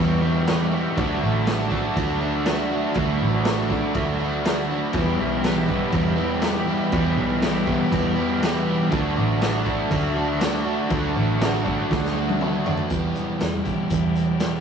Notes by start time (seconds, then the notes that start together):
Already playing: E2 B2 E3 B3 E4 G4 B4 E5 C#6
0.00 G3 B3 G4
0.21 E2 B2 E3 G3 B3 E4 G4
0.27 B3
0.46 E3 G3 B3 E4 G4, snare, crash
0.71 E3 G3 B3 E4 G4
0.94 D2 D3 F#3 A3 F#4 D5 A5, kick, crash
0.99 D4 F#4
1.22 A1 A3 D4 F#4
1.45 D3 F#3 A3 D4, snare, crash
1.50 F#4
1.71 D3 A3 D4 F#4, kick
1.96 D2 D3 A3 D4 F#4, kick, crash
2.21 D3 A3 D4 F#4
2.44 D3 F#3 A3 D4, snare, crash
2.49 F#4
2.71 A3 D4 F#4
2.94 D2 D3 F#3 A3 B5, kick, crash
2.99 D4 F#4
3.21 A1 A3 D4 F#4
3.45 D3 F#3 A3 D4, snare, crash
3.49 F#4
3.70 D3 A3 D4 F#4, kick
3.94 D2 D3 A3 D4, kick, crash
3.98 F#4
4.19 D3 A3 D4 F#4
4.44 D3 F#3 A3 D4 F#4, snare, crash
4.70 A3 D4 F#4
4.93 E2 B2 E3 G3 B3 E4 G4 B4, kick, crash
4.98 G4
5.19 B1 E3 G3 B3 G4
5.43 E3 G3 B3 E4 G4, snare, crash
5.66 E2 B2 E3 G3 B3 G4, kick
5.92 E2 E3 G3 B3 G4, kick, crash
6.16 E2 B2 E3 G3 B3 E4 G4
6.41 E3 G3 B3 E4 G4, snare, crash
6.67 E3 G3 B3 E4 G4
6.92 E2 B2 E3 G3 B3 E4 G4, kick, crash
7.16 B1 E3 G3 B3 G4
7.42 E3 G3 B3 E4 G4, snare, crash
7.66 E2 B2 E3 G3 B3 G4, kick
7.91 E2 E3 G3 B3 G4, kick, crash
8.16 E2 B2 E3 G3 B3 E4 G4
8.42 E3 G3 B3 E4 G4, snare, crash
8.67 E3 G3 B3 E4 G4
8.91 D2 D3 F#3 A3 D4 F#4 D5 E5 A5, kick, crash
9.15 A1 A3 D4 F#4
9.40 D3 F#3 A3 D4 F#4, snare, crash
9.64 D3 A3 D4 F#4, kick
9.89 D2 D3 A3 D4 F#4, kick, crash
10.14 D3 A3 D4 F#4
10.39 D3 F#3 A3 D4 F#4, snare, crash
10.64 A3 D4 F#4
10.89 D2 D3 F#3 A3 D4 F#4 F#5, kick, crash
11.14 A1 A3 D4 F#4
11.40 D3 F#3 A3 D4 F#4, snare, crash
11.64 D3 A3 D4 F#4, kick
11.90 D2 D3 A3 D4 F#4, kick, snare
12.05 snare
12.15 D3 A3 D4 F#4
12.29 high tom
12.39 D3 F#3 A3 D4 F#4, mid tom
12.65 A3 D4 F#4, floor tom
12.77 floor tom
12.89 E2 B2 E3 G3 B3 E4, kick, closed hi-hat
12.93 G4
13.15 closed hi-hat
13.40 E2, snare, closed hi-hat
13.64 E3 B3 E4 G4, kick, closed hi-hat
13.90 E2, kick, closed hi-hat
14.15 closed hi-hat
14.39 E3 B3 E4 G4, snare, closed hi-hat